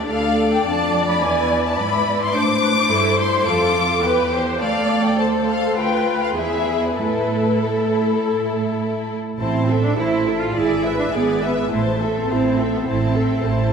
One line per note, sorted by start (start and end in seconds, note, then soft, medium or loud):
0.00 0.64 D4 soft
0.08 0.64 D2 soft
0.08 0.64 A4 soft
0.08 1.19 D5 soft
0.08 0.49 F5 medium
0.53 0.66 G5 medium
0.65 1.20 F2 soft
0.65 1.21 D4 soft
0.65 2.31 D5 medium
0.65 1.07 A5 medium
1.08 1.22 B5 medium
1.22 1.78 E2 soft
1.22 1.77 E4 soft
1.22 1.77 B4 soft
1.22 1.64 G#5 medium
1.65 1.78 A5 medium
1.78 2.34 G#2 soft
1.78 2.33 E4 medium
1.78 2.33 B4 soft
1.78 2.21 B5 medium
2.22 2.35 C6 medium
2.34 2.90 A2 soft
2.34 2.91 D4 soft
2.34 2.42 C5 medium
2.34 3.48 C5 soft
2.34 3.20 D6 medium
2.62 2.70 B4 soft
2.90 3.48 G2 soft
2.90 3.18 E4 medium
2.90 3.19 A4 medium
3.19 3.47 E4 medium
3.19 3.47 C5 medium
3.19 3.47 C6 medium
3.47 4.03 F2 soft
3.47 4.04 F4 soft
3.47 4.04 A4 soft
3.47 4.05 A4 medium
3.47 4.33 D6 medium
4.04 4.62 E2 soft
4.04 4.62 G4 soft
4.04 4.33 B4 soft
4.04 4.34 B4 medium
4.33 4.62 C5 soft
4.33 4.62 C5 medium
4.61 5.75 D2 soft
4.61 5.75 A4 soft
4.61 5.19 D5 soft
4.61 5.20 D5 medium
4.61 5.03 F5 medium
5.06 5.20 G5 medium
5.19 5.76 A4 medium
5.19 5.77 C5 soft
5.19 5.27 A5 medium
5.48 5.77 F5 medium
5.77 6.35 D2 soft
5.77 6.37 F4 soft
5.77 6.37 B4 medium
5.77 6.37 B4 soft
5.77 6.21 G5 medium
6.23 6.28 F5 medium
6.35 6.98 E2 soft
6.35 6.96 E4 soft
6.35 6.97 G#4 soft
6.35 6.96 G#4 soft
6.35 6.81 E5 medium
6.85 6.97 B4 medium
6.97 9.19 A2 soft
6.97 9.15 E4 soft
6.97 9.19 A4 soft
6.97 9.06 A4 soft
6.97 7.58 B4 medium
7.59 8.80 A4 soft
9.39 9.91 A1 soft
9.39 9.80 C4 medium
9.39 9.66 E4 soft
9.39 9.67 C5 soft
9.39 9.67 A5 soft
9.68 9.97 A4 soft
9.68 9.98 A4 soft
9.68 9.98 E5 soft
9.85 9.98 D4 medium
9.97 10.48 A1 soft
9.97 10.40 E4 medium
9.97 10.26 E4 soft
9.97 10.26 C5 soft
9.97 10.27 A5 soft
10.26 10.55 A4 soft
10.26 10.56 E5 soft
10.41 10.56 F4 medium
10.54 11.06 G#1 soft
10.54 10.98 E4 medium
10.54 10.82 G#4 soft
10.54 10.82 D5 soft
10.54 10.82 G#5 soft
10.84 11.13 B4 soft
10.84 11.13 E5 soft
11.00 11.05 D4 medium
11.12 11.64 G#1 soft
11.12 11.70 B3 medium
11.12 11.43 G#4 soft
11.12 11.42 D5 soft
11.12 11.42 G#5 soft
11.42 11.71 B4 soft
11.42 11.71 E5 soft
11.71 12.22 A1 soft
11.71 12.14 A3 medium
11.71 11.98 E4 soft
11.71 11.99 C5 soft
11.71 11.98 A5 soft
12.00 12.29 A4 soft
12.00 12.30 A4 soft
12.00 12.30 E5 soft
12.16 12.28 C4 medium
12.29 12.80 A1 soft
12.29 12.71 C4 medium
12.29 12.58 E4 soft
12.29 12.58 C5 soft
12.29 12.58 A5 soft
12.58 12.87 A4 soft
12.58 12.87 E5 soft
12.73 12.87 B3 medium
12.86 13.37 A1 medium
12.86 13.72 C4 medium
12.86 13.13 E4 soft
12.86 13.13 C5 soft
12.86 13.14 A5 soft
13.14 13.43 A4 soft
13.14 13.44 A4 soft
13.14 13.44 E5 soft
13.43 13.73 A1 soft
13.43 13.73 E4 soft
13.43 13.72 C5 soft
13.43 13.73 A5 soft